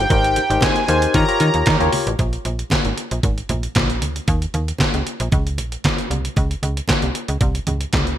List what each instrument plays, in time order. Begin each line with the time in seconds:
Already playing: analog synth lead G5
0.10 fm bass G#1, tine electric piano D#4 G4 A#4 C5, kick, closed hi-hat, muted conga
0.24 closed hi-hat
0.36 closed hi-hat, muted conga
0.50 fm bass G#1, tine electric piano D#4 G4 A#4 C5, closed hi-hat
0.61 analog polysynth C4 G#4 C5, analog synth lead G#5, kick, snare, clap, closed hi-hat, high conga
0.76 closed hi-hat
0.88 fm bass D#2, analog polysynth C4 G#4 C5, tine electric piano D#4 G4 A#4 C5, closed hi-hat
1.02 closed hi-hat
1.14 fm bass D#3, tine electric piano F4 G4 A#4 C#5, analog synth lead A#5, kick, closed hi-hat, muted conga, low conga
1.28 tine electric piano F4 G4 A#4 C#5, closed hi-hat
1.40 fm bass D#3, closed hi-hat, muted conga
1.54 fm bass D#2, closed hi-hat
1.66 fm bass D#3, analog polysynth G4 A#4 C#5, kick, snare, clap, closed hi-hat, high conga
1.80 fm bass D#2, tine electric piano F4 G4 A#4 C#5, closed hi-hat, high conga
1.92 open hi-hat, high conga
2.07 fm bass A1, closed hi-hat
2.19 fm bass A#1, kick, closed hi-hat, muted conga
2.33 closed hi-hat
2.45 fm bass A#1, closed hi-hat, muted conga
2.59 closed hi-hat
2.70 kick, snare, clap, closed hi-hat, high conga
2.85 fm bass G#1, closed hi-hat
2.98 closed hi-hat
3.11 fm bass A#1, closed hi-hat
3.23 fm bass G#1, kick, closed hi-hat, muted conga, low conga
3.38 closed hi-hat
3.49 fm bass A#1, closed hi-hat, muted conga, low conga
3.63 closed hi-hat
3.75 fm bass A#1, kick, snare, clap, closed hi-hat, high conga
3.90 closed hi-hat
4.02 fm bass D2, closed hi-hat, high conga
4.16 closed hi-hat
4.28 fm bass D#2, kick, closed hi-hat, muted conga
4.42 closed hi-hat
4.54 fm bass D#2, closed hi-hat, muted conga
4.68 closed hi-hat
4.78 kick, snare, clap, closed hi-hat, high conga
4.94 fm bass C#2, closed hi-hat
5.07 closed hi-hat
5.20 fm bass A#1, closed hi-hat
5.32 fm bass C#2, kick, closed hi-hat, muted conga, low conga
5.47 closed hi-hat
5.58 fm bass A#1, closed hi-hat, muted conga
5.72 closed hi-hat
5.84 kick, snare, clap, closed hi-hat, high conga
5.98 closed hi-hat
6.11 fm bass C2, closed hi-hat, high conga
6.25 closed hi-hat
6.36 fm bass C#2, kick, closed hi-hat, muted conga
6.51 closed hi-hat
6.63 fm bass C#2, closed hi-hat, muted conga
6.77 closed hi-hat
6.88 kick, snare, clap, closed hi-hat, high conga
7.02 fm bass C2, closed hi-hat
7.15 closed hi-hat
7.28 fm bass C#2, closed hi-hat
7.41 fm bass C2, kick, closed hi-hat, muted conga, low conga
7.55 closed hi-hat
7.67 fm bass C#2, closed hi-hat, muted conga, low conga
7.81 closed hi-hat
7.93 fm bass C#2, kick, snare, clap, closed hi-hat, high conga
8.07 closed hi-hat